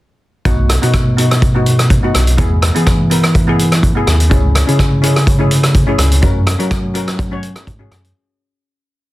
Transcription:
0.45 B1 B3 D#4 F#4, kick, closed hi-hat
0.69 cross-stick, closed hi-hat
0.82 B2 B3 D#4 F#4, closed hi-hat
0.94 kick, cross-stick, closed hi-hat
1.17 B3 D#4 F#4, closed hi-hat
1.31 cross-stick, closed hi-hat
1.42 kick, closed hi-hat
1.55 B3 D#4 F#4
1.66 closed hi-hat
1.79 cross-stick, closed hi-hat
1.90 kick, closed hi-hat
2.03 B3 D#4 F#4
2.15 B1, cross-stick, closed hi-hat
2.27 closed hi-hat
2.37 E2 B3 E4 G#4, kick, closed hi-hat
2.62 cross-stick, closed hi-hat
2.75 E3 B3 E4 G#4, closed hi-hat
2.86 kick, cross-stick, closed hi-hat
3.10 B3 E4 A#4, closed hi-hat
3.23 cross-stick, closed hi-hat
3.35 kick, closed hi-hat
3.47 B3 E4 G#4
3.59 closed hi-hat
3.72 cross-stick, closed hi-hat
3.83 kick, closed hi-hat
3.95 B3 E4 G#4
4.07 D#2, cross-stick, closed hi-hat
4.20 closed hi-hat
4.30 C#2 C#4 E4 G#4, kick, closed hi-hat
4.55 cross-stick, closed hi-hat
4.67 C#3 C#4 E4 G#4, closed hi-hat
4.79 kick, cross-stick, closed hi-hat
5.02 C#4 E4 G#4, closed hi-hat
5.16 cross-stick, closed hi-hat
5.27 kick, closed hi-hat
5.38 C#4 E4 G#4
5.51 closed hi-hat
5.63 cross-stick, closed hi-hat
5.74 kick, closed hi-hat
5.87 C#4 E4 G#4
5.98 C#2, cross-stick, closed hi-hat
6.12 closed hi-hat
6.22 F#2 C#4 F#4 A#4, kick, closed hi-hat
6.47 cross-stick, closed hi-hat
6.59 F#3 C#4 F#4 A#4, closed hi-hat
6.71 kick, cross-stick, closed hi-hat
6.94 C#4 F#4 A#4, closed hi-hat
7.08 cross-stick, closed hi-hat
7.19 kick, closed hi-hat
7.31 C#4 F#4 C#5
7.43 closed hi-hat
7.56 cross-stick, closed hi-hat
7.67 G#2, kick, closed hi-hat
7.79 C#4 F#4 G#4
7.91 F#2, cross-stick, closed hi-hat
8.04 closed hi-hat

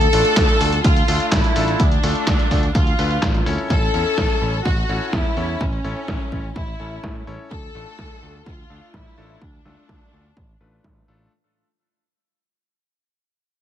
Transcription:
Already playing: A4
0.01 closed hi-hat
0.13 A1 A3 D4 F4 A4, open hi-hat
0.25 closed hi-hat
0.37 D2, kick, snare, clap, closed hi-hat
0.49 closed hi-hat
0.61 D2 A3 D4 F4 A4, open hi-hat
0.73 closed hi-hat
0.84 D2 F4, kick, closed hi-hat
0.96 closed hi-hat
1.08 D2 A3 D4 F4 A4, open hi-hat
1.20 closed hi-hat
1.32 A1 E4, kick, snare, clap, closed hi-hat
1.44 closed hi-hat
1.56 A1 A3 D4 F4 A4, open hi-hat
1.68 closed hi-hat
1.80 D2 D4, kick, closed hi-hat
1.92 closed hi-hat
2.03 D2 A3 D4 F4 A4, open hi-hat
2.15 closed hi-hat
2.27 D2, kick, snare, clap, closed hi-hat
2.39 closed hi-hat
2.51 D2 A3 D4 F4 A4, kick, open hi-hat
2.63 closed hi-hat
2.75 D2 F4, kick, closed hi-hat
2.87 closed hi-hat
2.99 D2 A3 D4 F4 B4, open hi-hat
3.11 closed hi-hat
3.23 A1, kick, snare, clap, closed hi-hat
3.34 closed hi-hat
3.46 D2 C#4 E4 A4 C#5, open hi-hat
3.58 closed hi-hat
3.70 A1 A4, kick, closed hi-hat
3.82 closed hi-hat
3.94 E2 C#4 E4 A4 C#5, closed hi-hat
4.06 closed hi-hat
4.18 A1, kick, snare, closed hi-hat
4.30 closed hi-hat
4.42 A1 C#4 E4 A4 C#5
4.54 closed hi-hat
4.65 A1 F#4, kick, closed hi-hat
4.77 closed hi-hat
4.89 A1 C#4 E4 A4 C#5, closed hi-hat
5.01 closed hi-hat
5.13 E2 E4, kick, snare, closed hi-hat
5.25 closed hi-hat
5.37 E2 C#4 E4 A4 C#5, closed hi-hat
5.49 closed hi-hat
5.61 A1 C#4, kick, closed hi-hat
5.73 closed hi-hat
5.84 A1 C#4 E4 A4 C#5, closed hi-hat
5.96 closed hi-hat
6.08 A1, kick, snare, closed hi-hat
6.20 closed hi-hat
6.32 A1 C#4 E4 A4 C#5, kick
6.44 closed hi-hat
6.56 A1 E4, kick, closed hi-hat
6.68 closed hi-hat
6.80 A1 C#4 E4 A4 C#5, closed hi-hat
6.92 closed hi-hat
7.04 A2, kick, snare, closed hi-hat
7.16 closed hi-hat
7.27 A1 C#4 E4 A4 C#5, closed hi-hat
7.39 closed hi-hat
7.51 D2 A4, kick, closed hi-hat
7.63 closed hi-hat
7.75 A1 A3 D4 F4 A4, closed hi-hat
7.87 closed hi-hat
7.99 D2, kick, snare, closed hi-hat
8.23 D2 A3 D4 F4 A4
8.34 closed hi-hat
8.46 D2 F4, kick, closed hi-hat
8.58 closed hi-hat
8.70 D2 A3 D4 F4 A4, closed hi-hat
8.94 A1 E4, kick, snare, closed hi-hat
9.18 A1 A3 D4 F4 A4, closed hi-hat
9.41 D2 D4, kick, closed hi-hat
9.53 closed hi-hat
9.65 D2 A3 D4 F4 A4, snare, closed hi-hat
9.89 D2, kick, snare
10.13 D2 A3 D4 F4 A4
10.25 closed hi-hat
10.37 A1, kick, closed hi-hat
10.49 closed hi-hat
10.61 A1 A3 D4 F4 B4, closed hi-hat
10.84 A1, kick, snare
11.08 A1 A3 D4 F4 A4

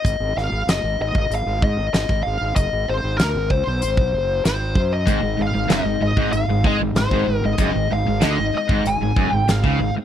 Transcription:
Already playing: D#5
0.04 G#1, kick, closed hi-hat
0.20 G#1
0.37 G#1 F5, snare
0.52 G#1
0.67 F#1 D#5, snare, closed hi-hat
0.84 G#1
1.00 G#1 D#5
1.15 G#1, kick
1.30 G#1, closed hi-hat
1.35 F5
1.46 G#1
1.62 G#2 D#5, kick
1.77 G#1
1.93 G#1 D#5, snare, closed hi-hat
2.09 G#1, kick
2.23 G#1 F5
2.41 G#1
2.56 F#1 D#5, kick, closed hi-hat
2.73 G#1
2.88 G#1 C5
3.04 G#1
3.18 D2 A#4, snare, closed hi-hat
3.35 G#1
3.50 C#2 C5, kick
3.67 B1
3.82 G#1, closed hi-hat
3.97 B1, kick
4.12 F#1
4.45 G#1 C5, snare, closed hi-hat
4.75 F#2, kick
4.93 D#5
5.06 G#1 G#2 D#3 G#3 C4 D#4 G#4, kick, closed hi-hat
5.23 G#1 G#2
5.37 G#1 G#2 G#3 C4 D#4
5.42 G#4 F5
5.54 G#1 G#2
5.69 F#1 F#2 G#2 D#3 G#3 C4 D#4 D#5, snare, closed hi-hat
5.74 G#4
5.84 G#1 G#2
6.00 G#1 G#2 G#3 C4 D#5
6.05 D#4 G#4
6.17 G#1 G#2 C4 G#4, kick
6.21 G#3
6.32 G#1 G#2 F5, closed hi-hat
6.48 G#1 G#2 C4 D#4 G#4
6.53 G#3
6.63 G#2 G#3 C4 D#4 G#4 D#5, kick
6.80 G#1 G#2 G#3 C4 D#4 G#4
6.94 G#1 G#2 D#3 G#3 C4 D#4 G#4 C5, snare, closed hi-hat
7.11 G#1 G#2, kick
7.27 G#1 G#2 G#3 C4 D#4 G#4
7.44 G#1 G#2 D#5
7.58 F#1 F#2 G#2 D#3 G#3 C4 D#4 G#4, kick, closed hi-hat
7.75 G#1 G#2
7.91 G#1 G#2 G#3 C4 D#4 G#4 F5
8.07 G#1 G#2
8.20 D2 G#2 D3 D#3 G#3 C4 D#4 G#4 D#5, snare, closed hi-hat
8.38 G#1 G#2
8.53 G#3 C4 D#4 G#4, muted fingered electric bass stroke, muted overdriven electric guitar stroke
8.58 D#5
8.68 G#1 G#2 G#3 C4 D#4 G#4, kick
8.85 G#1 G#2 G#5, closed hi-hat
9.00 G#1 G#2 G#3 C4 D#4 G#4
9.16 F#1 F#2 G#3 C4 D#4 G#4, kick
9.30 G#1 G#2 G#3 C4 D#4 G#4 G5
9.47 G#1 G#2 D#3 G#3 C4 D#4 G#4 F5, snare, closed hi-hat
9.64 C#2 C#3, kick
9.78 G#1 G#2 G#3 C4 D#4 G#4
9.94 muted fingered electric bass stroke, muted overdriven electric guitar stroke

